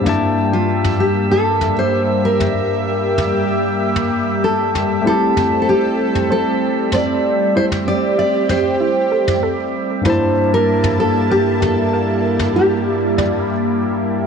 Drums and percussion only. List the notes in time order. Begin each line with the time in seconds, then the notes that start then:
0.06 mid tom
0.84 mid tom
1.61 mid tom
2.40 mid tom
3.18 mid tom
3.96 mid tom
4.75 mid tom
5.37 mid tom
6.15 mid tom
6.92 mid tom
7.72 mid tom
8.49 mid tom
9.28 mid tom
10.05 mid tom
10.84 mid tom
11.62 mid tom
12.39 mid tom
13.18 mid tom